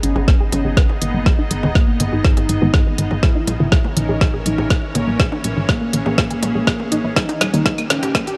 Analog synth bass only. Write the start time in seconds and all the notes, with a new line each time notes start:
0.03 G#1
0.16 G#1
0.28 G#1
0.40 G#1
0.53 G#1
0.65 G#1
0.77 G#1
1.02 G#1
1.14 G#1
1.26 G#1
1.51 G#1
1.63 D#1
1.75 G#1
2.00 G#1
2.13 G#1
2.25 G#1
2.37 G#1
2.49 G#1
2.62 G#1
2.74 G#1
2.98 G#1
3.11 G#1
3.23 A#1
3.48 A#1
3.60 G#1
3.72 A#1
3.97 A#1
4.09 A#1
4.21 A#1
4.34 A#1
4.46 A#1
4.58 A#1
4.71 A#1
4.95 A#1
5.08 A#1
5.20 A#1
5.44 A#1
5.57 G#1
5.69 A#1
5.93 A#1
6.06 A#1
6.18 A#2
6.31 G#1
6.43 A#1
6.55 A#1
6.67 A#1
6.92 A#1
7.04 A#1
7.16 D#1
7.41 D#1
7.54 C#2
7.66 D#1
7.90 D#1
8.03 D#1
8.15 D#1
8.27 D#1